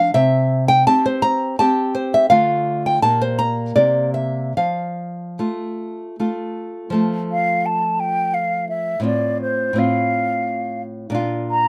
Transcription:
Already playing: nylon-string guitar F3 D4 F5
0.14 nylon-string guitar C3 E5
0.68 nylon-string guitar G5
0.87 nylon-string guitar C4 G4 A5
1.06 nylon-string guitar C5
1.22 nylon-string guitar A#5
1.59 nylon-string guitar C4 G4 A5
1.95 nylon-string guitar C5
2.14 nylon-string guitar E5
2.30 nylon-string guitar D3 A3 F4 F5
2.86 nylon-string guitar G5
3.02 nylon-string guitar A#2 A#3 G4 A5
3.22 nylon-string guitar C5
3.39 nylon-string guitar A#5
3.76 nylon-string guitar C3 A#3 G4 D5
4.14 nylon-string guitar E5
4.57 nylon-string guitar F3 F5
5.39 nylon-string guitar A3 F4
6.20 nylon-string guitar A3 F4
6.90 nylon-string guitar F3 A3 F4
7.32 flute F5
7.66 flute A5
8.00 flute G5
8.34 flute F5
8.69 flute E5
9.00 nylon-string guitar A2 C4 F4
9.05 flute D5
9.42 flute C5
9.73 nylon-string guitar A2 C4
9.77 nylon-string guitar F4, flute F5
11.10 nylon-string guitar A#2 D4
11.14 nylon-string guitar F4
11.51 flute A#5

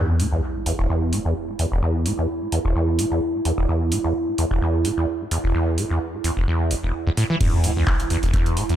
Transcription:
Already playing: acid bass E2, ambient pad E4, sub drop
0.20 acid bass A2, open hi-hat
0.32 acid bass E2
0.66 acid bass E2, open hi-hat
0.79 acid bass E1
0.90 acid bass E2
1.13 acid bass A2, open hi-hat
1.25 acid bass E2
1.59 acid bass E2, open hi-hat
1.72 acid bass E1
1.82 acid bass E2
2.06 acid bass A2, open hi-hat
2.18 acid bass E2
2.52 acid bass E2, open hi-hat
2.65 acid bass E1
2.76 acid bass E2
2.99 acid bass A2, open hi-hat
3.11 acid bass E2
3.45 acid bass E2, open hi-hat
3.58 acid bass E1
3.69 acid bass E2
3.92 acid bass A2, open hi-hat
4.04 acid bass E2
4.38 acid bass E2, open hi-hat
4.51 acid bass E1
4.62 acid bass E2
4.85 acid bass A2, open hi-hat
4.97 acid bass E2
5.31 acid bass E2, open hi-hat
5.44 acid bass E1
5.55 acid bass E2
5.78 acid bass A2, open hi-hat
5.90 acid bass E2
6.24 acid bass E2, open hi-hat
6.37 acid bass E1
6.48 acid bass E2
6.71 acid bass E1, open hi-hat
6.83 acid bass E1
7.07 acid bass E2
7.17 acid bass A2, open hi-hat
7.30 acid bass E3
7.41 acid bass E2, ambient pad E4, kick, closed hi-hat, crash, sub drop
7.64 acid bass A2, open hi-hat
7.77 acid bass E2
7.87 kick, clap
8.00 closed hi-hat
8.10 acid bass E2, open hi-hat
8.23 acid bass E1, closed hi-hat
8.34 acid bass E2, kick, closed hi-hat
8.46 closed hi-hat
8.57 acid bass A2, open hi-hat
8.69 acid bass E2, closed hi-hat

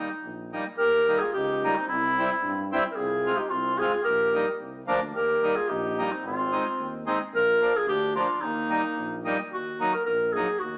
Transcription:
Already playing: clarinet D#4
0.23 tuba A#1
0.53 accordion G3 A#3 D#4
0.77 tuba D#2, trumpet G4, clarinet A#4
1.08 accordion G3 A#3 D#4
1.19 trumpet F4, clarinet G#4
1.33 tuba C#2, trumpet D#4, clarinet G4
1.64 accordion G3 A#3 D#4
1.75 trumpet C4, clarinet D#4
1.88 tuba C2, trumpet C4, clarinet E4
2.19 accordion G3 C4 E4
2.43 tuba G2
2.72 accordion G3 C4 E4
2.91 trumpet G4, clarinet A#4
2.96 tuba C2, trumpet F4, clarinet G#4
3.27 accordion G#3 C4 F4
3.36 trumpet D#4, clarinet G4
3.48 tuba C2, trumpet C4, clarinet F4
3.75 trumpet F4, clarinet G#4
3.81 accordion G#3 C4 F4
4.02 tuba A#1, trumpet G4, clarinet A#4
4.34 accordion G3 A#3 D#4
4.60 tuba C2
4.87 tuba D2, accordion F3 A#3 D4
5.14 tuba D#2, trumpet G4, clarinet A#4
5.43 accordion G3 A#3 D#4
5.56 trumpet F4, clarinet G#4
5.68 tuba A#1, trumpet D#4, clarinet G4
5.99 accordion G3 A#3 D#4
6.11 trumpet C4, clarinet D#4
6.24 tuba G#1, trumpet C4, clarinet F4
6.52 accordion G#3 C4 D#4
6.78 tuba D#2
7.06 accordion G#3 C4 D#4
7.32 tuba A#1, clarinet A#4
7.37 trumpet F4
7.61 accordion F3 A#3 D4
7.75 trumpet F4, clarinet G#4
7.86 tuba D2, trumpet D4, clarinet G4
8.15 accordion F3 A#3 D4, trumpet D4, clarinet F4
8.41 tuba D#2, trumpet A#3, clarinet D#4
8.70 accordion G3 A#3 D#4
8.97 tuba A#1
9.25 accordion G3 A#3 D#4
9.52 tuba D#2, clarinet F#4
9.81 accordion F#3 A#3 D#4
9.93 clarinet A#4
10.05 tuba A#1, clarinet A#4
10.33 accordion F#3 A#3 D#4, clarinet G#4
10.59 tuba D#2, clarinet F#4

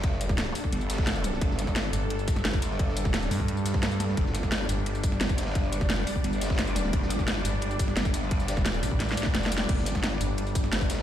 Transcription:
Already playing: wobble bass G1, synth drone G3 D4 A4
0.03 kick, closed hi-hat, ride
0.12 snare
0.21 closed hi-hat, ride, tambourine
0.29 kick, snare
0.38 snare, closed hi-hat, ride
0.55 open hi-hat, ride, tambourine
0.64 kick
0.72 wobble bass G1, closed hi-hat, ride
0.81 tambourine
0.89 snare, closed hi-hat, ride, tambourine
0.93 snare, ride
0.98 kick, snare, ride
1.02 snare, ride
1.07 snare, closed hi-hat, ride
1.16 tambourine
1.23 snare, closed hi-hat, ride, tambourine
1.33 snare
1.41 wobble bass G1, kick, closed hi-hat, ride
1.50 snare
1.59 snare, closed hi-hat, ride, tambourine
1.67 kick, snare
1.76 snare, closed hi-hat, ride
1.84 snare
1.93 fm bass G1, snare, closed hi-hat, ride, tambourine
2.10 closed hi-hat, ride
2.19 ride, tambourine
2.28 kick, closed hi-hat, ride, tambourine
2.36 snare
2.44 wobble bass G1, snare, closed hi-hat, ride
2.54 kick, tambourine
2.62 snare, closed hi-hat, ride, tambourine
2.71 snare
2.79 kick, closed hi-hat, ride
2.88 snare
2.97 closed hi-hat, ride, tambourine
3.05 kick, snare
3.14 snare, closed hi-hat, ride
3.23 tambourine
3.31 fm bass G2, snare, open hi-hat, ride, tambourine
3.40 kick
3.48 closed hi-hat, ride
3.57 tambourine
3.65 snare, closed hi-hat, ride, tambourine
3.74 kick, snare
3.83 snare, closed hi-hat, ride
3.91 snare, tambourine
4.00 snare, closed hi-hat, ride, tambourine
4.09 snare
4.17 wobble bass G1, synth drone D5, kick, closed hi-hat, ride
4.26 snare
4.35 snare, closed hi-hat, ride, tambourine
4.43 kick, snare
4.51 snare, closed hi-hat, ride
4.60 snare
4.69 fm bass G1, snare, closed hi-hat, ride, tambourine
4.86 closed hi-hat, ride
4.95 ride, tambourine
5.04 kick, closed hi-hat, ride, tambourine
5.12 snare
5.20 wobble bass G1, snare, closed hi-hat, ride
5.29 kick, tambourine
5.38 snare, closed hi-hat, ride, tambourine
5.42 snare, ride
5.46 snare, ride
5.51 snare, ride
5.55 kick, closed hi-hat, ride
5.63 snare
5.73 closed hi-hat, ride, tambourine
5.81 wobble bass F#1, kick, snare
5.89 snare, closed hi-hat, ride
6.06 open hi-hat, ride, tambourine
6.16 kick
6.24 wobble bass G1, closed hi-hat, ride
6.33 tambourine
6.41 snare, closed hi-hat, ride, tambourine
6.45 snare, ride
6.50 kick, snare, ride
6.54 snare, ride
6.58 snare, closed hi-hat, ride
6.67 tambourine
6.76 snare, closed hi-hat, ride, tambourine
6.83 snare
6.93 wobble bass G1, kick, closed hi-hat, ride
7.02 snare
7.10 snare, closed hi-hat, ride, tambourine
7.19 kick, snare
7.28 snare, closed hi-hat, ride
7.36 snare
7.44 fm bass G1, snare, closed hi-hat, ride, tambourine
7.61 closed hi-hat, ride
7.71 ride, tambourine
7.79 kick, closed hi-hat, ride, tambourine
7.88 snare
7.96 wobble bass G1, snare, closed hi-hat, ride
8.05 kick, tambourine
8.14 snare, closed hi-hat, ride, tambourine
8.22 snare
8.31 kick, closed hi-hat, ride
8.40 snare, tambourine
8.48 snare, closed hi-hat, ride, tambourine
8.57 kick, snare
8.65 snare, closed hi-hat, ride
8.74 tambourine
8.83 fm bass A1, snare, open hi-hat, ride, tambourine
8.91 kick
9.00 snare, closed hi-hat, ride
9.09 snare, tambourine
9.12 snare
9.17 snare, closed hi-hat, ride, tambourine
9.23 kick, snare
9.34 wobble bass F1, snare, closed hi-hat, ride
9.43 snare, tambourine
9.46 snare
9.52 closed hi-hat, tambourine
9.58 snare, ride
9.69 wobble bass G1, synth drone A4, kick, closed hi-hat, crash, ride
9.78 snare
9.86 snare, closed hi-hat, ride, tambourine
9.95 kick, snare
10.04 snare, closed hi-hat, ride
10.12 snare
10.20 fm bass G1, snare, closed hi-hat, ride, tambourine
10.38 closed hi-hat, ride
10.47 ride, tambourine
10.55 kick, closed hi-hat, ride, tambourine
10.64 snare
10.72 wobble bass G1, snare, closed hi-hat, ride
10.81 kick, tambourine
10.90 snare, closed hi-hat, ride, tambourine
10.94 snare, ride
10.98 snare, ride

